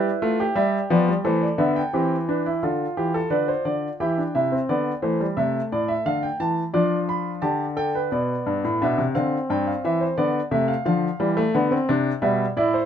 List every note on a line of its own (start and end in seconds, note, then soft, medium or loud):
0.00 0.54 E4 medium
0.00 0.54 B4 medium
0.22 0.43 A3 medium
0.22 0.39 F4 medium
0.40 1.23 G4 medium
0.55 0.77 G3 medium
0.55 0.77 E5 medium
0.90 1.12 F3 medium
0.90 1.07 B3 medium
0.90 1.12 D5 medium
1.08 1.25 G3 medium
1.25 1.46 E3 medium
1.25 1.46 A3 medium
1.25 1.92 A4 medium
1.25 1.42 C5 medium
1.42 1.59 D5 soft
1.58 1.80 D3 medium
1.58 1.80 B3 medium
1.58 1.76 E5 medium
1.76 2.60 G5 medium
1.93 2.61 E3 medium
1.93 2.15 C4 medium
1.93 2.15 G4 medium
2.29 2.45 D4 medium
2.29 2.50 B4 medium
2.46 2.63 E4 medium
2.63 2.84 D3 medium
2.63 3.97 F4 medium
2.63 2.85 A4 medium
2.63 3.30 F5 soft
2.97 3.19 E3 medium
2.97 3.14 G4 medium
3.14 3.31 A4 medium
3.30 3.52 D3 medium
3.30 3.48 B4 medium
3.30 3.64 D5 medium
3.48 3.66 C5 medium
3.65 3.87 D3 medium
3.65 3.87 D5 medium
4.00 4.22 E3 medium
4.00 4.17 E4 medium
4.00 4.22 G4 medium
4.00 5.34 G5 medium
4.18 4.35 D4 soft
4.35 4.57 C3 medium
4.35 4.52 E4 medium
4.35 4.57 E5 medium
4.52 4.69 C4 medium
4.69 4.91 D3 medium
4.69 4.91 B3 medium
4.69 4.91 D5 medium
5.02 5.24 E3 medium
5.02 5.20 A3 medium
5.02 5.24 C5 medium
5.20 5.38 G3 medium
5.37 5.59 C3 medium
5.37 6.71 A3 medium
5.37 6.71 A4 medium
5.37 5.59 E5 medium
5.72 5.94 A2 medium
5.72 5.89 D5 medium
5.88 6.06 E5 medium
6.06 6.27 D3 medium
6.06 6.23 F5 medium
6.23 6.40 G5 medium
6.40 6.62 E3 medium
6.40 6.62 A5 medium
6.73 7.41 F3 medium
6.73 8.08 D4 medium
6.73 7.41 F4 medium
6.73 6.96 D5 medium
7.09 7.30 B5 medium
7.42 8.10 D3 medium
7.42 7.64 G4 medium
7.42 7.64 A5 medium
7.77 7.94 A4 medium
7.77 7.99 G5 medium
7.95 8.12 B4 medium
8.12 8.33 B2 medium
8.12 8.79 B3 medium
8.12 8.79 D5 medium
8.46 8.63 G2 medium
8.64 8.81 A2 medium
8.82 8.98 B2 medium
8.82 9.03 D4 medium
8.82 9.03 E5 medium
8.98 9.15 C3 medium
9.15 9.36 D3 medium
9.15 10.15 C4 medium
9.15 9.36 F5 medium
9.50 9.71 G2 medium
9.50 9.67 G5 medium
9.67 9.84 F5 medium
9.84 10.06 E3 medium
9.84 10.01 E5 medium
10.01 10.18 C5 medium
10.18 10.39 D3 medium
10.18 10.39 B3 medium
10.18 10.39 D5 medium
10.51 10.73 C3 medium
10.51 10.73 A3 medium
10.51 10.69 E5 medium
10.68 10.85 F5 medium
10.86 11.07 D3 medium
10.86 11.07 F3 medium
10.86 12.19 F5 medium
11.20 11.41 E3 medium
11.20 11.37 G3 medium
11.37 11.54 A3 medium
11.54 11.76 D3 medium
11.54 11.71 B3 medium
11.71 11.88 C4 medium
11.89 12.10 C3 medium
11.89 12.10 D4 medium
12.22 12.44 B2 medium
12.22 12.44 G3 medium
12.22 12.44 E5 medium
12.57 12.78 A2 medium
12.57 12.79 E4 medium
12.57 12.74 D5 medium
12.74 12.86 C5 medium